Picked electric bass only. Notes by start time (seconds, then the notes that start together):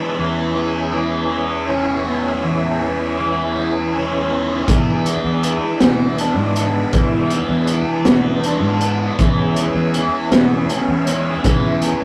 4.68 E2
5.24 E2
5.82 E2
6.37 G#2
6.93 E2
7.49 E2
8.06 E2
8.62 G#2
9.19 E2
9.74 E2
10.32 E2
10.88 E2
11.44 E2